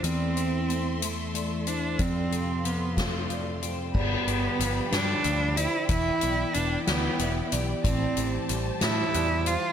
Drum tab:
CC |------|------|x-----|------|
HH |xxxxxx|xxxxxx|-xxxxx|xxxxxx|
SD |------|---o--|---o--|---o--|
BD |------|o--o--|o-----|o-----|

CC |------|
HH |xxxxxx|
SD |---o--|
BD |o-----|